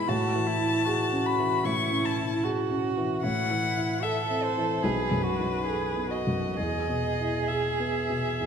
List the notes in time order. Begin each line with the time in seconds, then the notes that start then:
Already playing: G#2 G#3 B3 E4
0.07 A2 F#4 A5
0.35 E3
0.46 E4
0.60 E4
0.85 F#4 G#4
1.13 C#4
1.26 B5
1.39 E3
1.64 A2 E4 C#6
1.92 C#4
2.05 A5
2.18 E4
2.44 F#4 G#4
2.70 C#4
2.97 E3
3.22 A2 E4 F#5
3.50 E3
3.77 E4
4.03 A4 E5
4.30 C4
4.43 C5
4.58 E3
4.83 B1 G#4 B4
5.11 F#2
5.23 F#4
5.39 D#4
5.66 G#4 A4
5.97 B3
6.10 F#4 D#5
6.27 F#2
6.56 E2 G#4 D#5
6.89 B2
7.20 E4
7.48 G#4 E5
7.80 B3
8.10 B2
8.41 E2